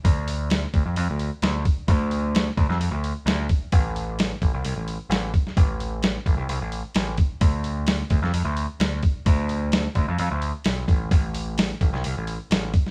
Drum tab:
HH |o-o-o-o-o-o-o-o-|o-o-o-o-o-o-o-o-|o-o-o-o-o-o-o-o-|o-o-o-o-o-o-o-o-|
SD |----o-------o---|----o--o----o---|----o-------o--o|----o-------o---|
BD |o-----o-------o-|o-----o-------o-|o-----o-------o-|o-----o-------o-|

HH |o-o-o-o-o-o-o-o-|o-o-o-o-o-o-o-o-|o-o-o-o-o-o-o-o-|
SD |----o--o----o---|----o-------o---|----o--o----o--o|
BD |o-----o-------o-|o-----o-------o-|o-----o-------o-|